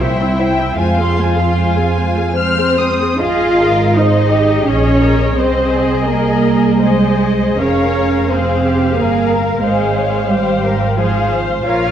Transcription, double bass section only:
0.00 0.78 C2 medium
0.78 2.93 F2 medium
3.20 4.63 G#1 medium
4.67 5.37 A#1 medium
5.37 7.56 C2 medium
7.61 8.94 F1 medium
8.97 9.63 G1 soft
9.63 11.61 G#1 medium
11.64 11.91 A#1 medium

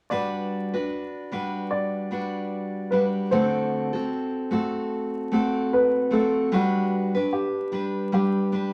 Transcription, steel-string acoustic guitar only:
0.11 0.73 G3 medium
0.11 0.73 D4 medium
0.11 0.73 F#4 medium
0.11 0.72 B4 medium
0.74 1.31 D4 soft
0.74 1.32 F#4 soft
0.74 1.31 B4 soft
1.32 2.10 G3 soft
1.32 2.11 D4 medium
1.32 2.12 F#4 soft
1.32 2.11 B4 medium
2.11 2.91 G3 soft
2.11 2.92 D4 soft
2.11 2.92 F#4 soft
2.11 2.92 B4 medium
2.92 3.32 G3 soft
2.92 3.32 D4 soft
2.92 3.31 F#4 soft
2.92 3.33 B4 medium
3.32 3.94 D3 medium
3.32 3.94 A3 medium
3.32 3.94 C4 medium
3.32 3.93 F#4 medium
3.32 3.92 A4 medium
3.93 4.51 C4 soft
3.93 4.50 F#4 soft
3.93 4.52 A4 medium
4.51 5.30 A3 medium
4.51 5.32 C4 soft
4.51 5.33 F#4 medium
4.51 5.33 A4 medium
5.32 6.09 A3 medium
5.32 6.10 C4 medium
5.32 6.12 F#4 medium
5.32 6.12 A4 medium
6.11 6.51 A3 soft
6.11 6.52 C4 medium
6.11 6.52 F#4 medium
6.11 6.53 A4 medium
6.52 7.15 G3 medium
6.52 7.15 D4 medium
6.52 7.15 F#4 medium
6.52 7.13 B4 medium
7.15 7.72 D4 soft
7.15 7.73 B4 medium
7.72 8.11 G3 soft
7.72 8.12 D4 soft
7.72 8.13 B4 medium
8.12 8.51 G3 medium
8.12 8.52 D4 medium
8.12 8.53 B4 medium
8.52 8.73 G3 soft
8.52 8.73 D4 medium
8.52 8.73 B4 medium

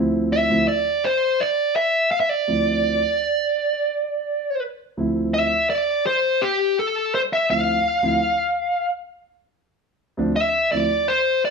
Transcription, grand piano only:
0.00 0.47 D2 medium
0.00 0.47 F3 medium
0.00 0.47 C4 medium
0.00 0.48 E4 medium
0.50 0.63 D2 medium
0.50 0.63 F3 medium
0.50 0.63 C4 medium
0.50 0.64 E4 medium
2.48 2.98 D2 medium
2.48 2.98 F3 soft
2.48 2.98 C4 soft
2.48 2.98 E4 medium
4.97 5.48 D2 medium
4.97 5.48 F3 medium
4.97 5.49 C4 medium
4.97 5.49 E4 medium
7.49 7.75 D2 soft
7.49 7.75 F3 soft
7.49 7.75 C4 soft
7.49 7.75 E4 medium
8.02 8.16 D2 medium
8.02 8.16 F3 medium
8.02 8.16 C4 medium
8.02 8.17 E4 medium
10.17 10.31 D2 medium
10.17 10.31 F3 medium
10.17 10.31 C4 medium
10.17 10.31 D4 medium
10.73 10.85 D2 medium
10.73 10.85 F3 medium
10.73 10.85 C4 medium
10.73 10.86 E4 medium

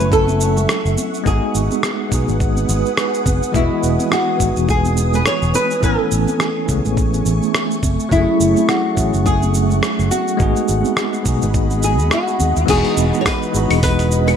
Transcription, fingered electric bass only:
0.00 0.65 F#1 medium
0.85 0.95 F#1 loud
1.26 1.39 G#1 medium
1.55 1.68 G#1 medium
2.12 2.25 B1 medium
2.28 2.65 G#1 medium
2.69 2.82 G#1 medium
3.26 3.39 F#1 medium
3.54 3.68 E1 medium
3.83 3.96 E1 medium
4.40 4.53 G#1 medium
4.57 5.22 E1 medium
5.42 5.52 E1 loud
5.83 5.96 A1 medium
6.12 6.25 A1 medium
6.69 6.82 C#2 medium
6.85 7.22 A1 medium
7.26 7.39 A1 loud
7.83 7.96 F#1 medium
8.12 8.25 F#1 medium
8.40 8.53 F#1 medium
8.97 9.10 A1 medium
9.14 9.79 F#1 medium
9.99 10.09 F#1 loud
10.40 10.53 G#1 loud
10.69 10.82 G#1 medium
11.26 11.39 B1 medium
11.42 11.99 G#1 medium
11.99 12.09 D#2 loud
12.40 12.53 D#2 medium
12.57 12.66 D#2 medium
12.69 12.82 E1 loud
12.97 13.10 E1 medium
13.54 13.68 G#1 medium
13.71 14.36 E1 medium

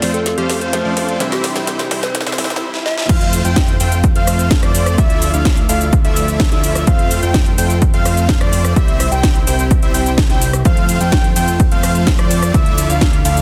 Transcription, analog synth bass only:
0.02 0.35 F2 loud
0.38 0.83 F2 loud
0.85 1.18 F2 loud
1.20 1.53 C2 medium
1.56 1.89 C2 loud
1.91 2.24 C2 loud
2.27 2.62 C2 loud
3.09 3.42 F2 medium
3.45 3.78 F2 medium
3.80 4.13 F2 loud
4.16 4.60 F2 medium
4.63 4.96 F2 loud
4.98 5.31 D2 medium
5.34 5.67 D2 loud
5.69 6.02 D2 loud
6.05 6.49 D2 loud
6.52 6.85 D2 loud
6.87 7.20 F2 loud
7.23 7.56 F2 medium
7.58 7.91 F2 loud
7.94 8.39 F2 loud
8.41 8.74 F2 loud
8.76 9.09 C2 loud
9.12 9.45 C2 medium
9.47 9.80 C2 loud
9.83 9.92 C2 loud
9.94 10.28 C2 loud
10.30 10.63 C2 loud
10.65 10.98 F2 loud
11.01 11.34 F2 loud
11.36 11.69 F2 loud
11.72 12.16 F2 loud
12.19 12.52 F2 loud
12.54 12.87 D2 loud
12.90 13.23 D2 loud
13.25 13.42 D2 loud

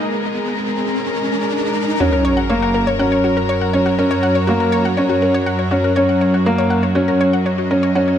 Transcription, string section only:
0.00 2.00 G#3 medium
0.00 2.73 G#4 medium
0.00 8.18 A#4 medium
0.00 2.00 D#5 medium
2.00 8.18 F#3 medium
2.13 8.18 F#4 medium
2.99 7.47 C#5 medium
7.32 8.18 D#5 medium

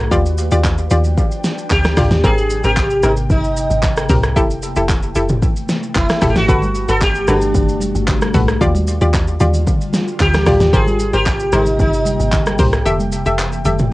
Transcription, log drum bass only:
0.00 0.10 B1 loud
0.12 0.50 D#2 loud
0.52 0.89 D#2 loud
0.91 1.17 D#2 loud
1.71 1.96 D2 loud
1.97 2.10 D2 loud
2.11 2.23 D#2 medium
2.24 2.63 G#1 loud
2.64 3.02 G#1 loud
3.04 3.29 G#1 loud
3.30 3.69 G1 loud
3.70 4.08 G#1 medium
4.10 4.38 C2 loud
4.36 4.75 F1 loud
4.77 5.14 F1 medium
5.16 5.41 F1 loud
5.96 6.09 F1 loud
6.22 6.35 F1 loud
6.36 6.48 G1 loud
6.49 6.87 G1 loud
6.89 7.27 G1 loud
7.28 7.54 G1 loud
7.55 7.94 F#1 loud
7.95 8.33 G1 medium
8.34 8.60 B1 loud
8.61 9.00 D#2 loud
9.01 9.39 D#2 loud
9.41 9.66 D#2 loud
10.21 10.46 D2 loud
10.47 10.60 D2 loud
10.61 10.73 D#2 medium
10.73 11.12 G#1 loud
11.14 11.51 G#1 medium
11.53 11.78 G#1 loud
11.80 12.18 G1 loud
12.20 12.58 G#1 loud
12.59 12.85 C2 loud
12.86 13.24 F1 loud
13.26 13.64 F1 medium
13.65 13.91 F1 loud

